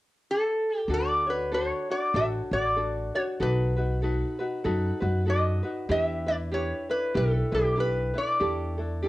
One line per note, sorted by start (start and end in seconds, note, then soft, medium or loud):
0.31 0.78 A4 medium
0.78 0.93 G4 medium
0.88 1.70 D2 medium
0.88 1.26 D4 medium
0.88 1.27 F#4 medium
0.88 1.26 A4 medium
0.94 1.29 D5 medium
1.27 1.51 D4 soft
1.27 1.52 F#4 soft
1.27 1.54 B4 medium
1.27 1.52 C#5 soft
1.52 1.89 D4 medium
1.52 1.89 F#4 medium
1.52 1.89 A4 medium
1.52 1.90 C#5 medium
1.52 1.91 C#5 medium
1.90 2.14 D4 soft
1.90 2.15 F#4 soft
1.90 2.16 D5 medium
2.14 2.38 A1 medium
2.14 2.52 D4 medium
2.14 2.52 F#4 medium
2.14 2.52 A4 medium
2.14 2.52 C#5 medium
2.14 2.26 E5 medium
2.51 3.09 A1 medium
2.51 2.76 D4 soft
2.51 2.77 F#4 soft
2.51 3.11 D5 medium
2.76 3.14 D4 soft
2.76 3.15 F#4 medium
2.76 3.14 A4 medium
3.15 3.40 D4 soft
3.15 3.40 F#4 soft
3.15 3.39 C#5 soft
3.15 3.22 C#5 medium
3.40 4.21 B1 medium
3.40 3.77 D#4 medium
3.40 3.76 F#4 medium
3.40 3.76 A4 medium
3.40 3.75 B4 medium
3.40 5.34 B4 medium
3.76 4.02 D#4 soft
3.76 4.02 F#4 soft
3.76 4.01 B4 soft
4.02 4.40 D#4 medium
4.02 4.39 F#4 medium
4.02 4.38 A4 medium
4.02 4.38 B4 medium
4.39 4.64 D#4 soft
4.39 4.64 F#4 soft
4.39 4.64 B4 medium
4.64 4.89 F#2 medium
4.64 5.02 D#4 medium
4.64 5.01 F#4 medium
4.64 5.00 A4 medium
4.64 4.99 B4 medium
5.00 5.59 F#2 medium
5.00 5.25 D#4 soft
5.00 5.26 F#4 medium
5.00 5.25 B4 medium
5.26 5.64 D#4 soft
5.26 5.63 F#4 medium
5.26 5.62 A4 medium
5.26 5.62 B4 medium
5.26 5.91 D#5 medium
5.63 5.89 D#4 soft
5.63 5.89 F#4 soft
5.63 5.89 B4 soft
5.89 6.71 E2 medium
5.89 6.27 D4 medium
5.89 6.27 E4 medium
5.89 6.27 G4 medium
5.89 6.25 B4 medium
5.89 6.28 E5 medium
6.26 6.51 D4 soft
6.26 6.51 E4 soft
6.26 6.52 B4 soft
6.26 6.35 D5 medium
6.51 6.89 D4 medium
6.51 6.89 E4 medium
6.51 6.89 G4 medium
6.51 6.88 B4 medium
6.51 6.90 C#5 medium
6.89 7.14 D4 soft
6.89 7.14 E4 soft
6.89 7.15 B4 soft
6.89 7.14 B4 medium
7.14 7.39 B1 medium
7.14 7.52 D4 medium
7.14 7.51 E4 medium
7.14 7.52 G4 medium
7.14 7.54 A4 medium
7.14 7.50 B4 medium
7.52 8.09 B1 medium
7.52 7.76 D4 soft
7.52 7.76 E4 soft
7.52 7.80 G4 medium
7.52 7.76 B4 soft
7.76 8.14 D4 medium
7.76 8.14 E4 medium
7.76 8.14 G4 soft
7.76 8.13 B4 medium
7.80 8.17 B4 medium
8.14 8.39 D4 soft
8.14 8.39 E4 soft
8.14 8.40 B4 soft
8.18 9.09 D5 medium
8.40 9.09 E2 medium
8.40 8.78 D4 medium
8.40 8.78 E4 medium
8.40 8.77 G4 medium
8.40 8.77 A4 medium
8.78 9.02 D4 soft
8.78 9.03 E4 soft
8.78 9.03 A4 soft
9.03 9.09 D4 medium
9.03 9.09 E4 medium
9.03 9.09 G4 medium
9.03 9.09 A4 medium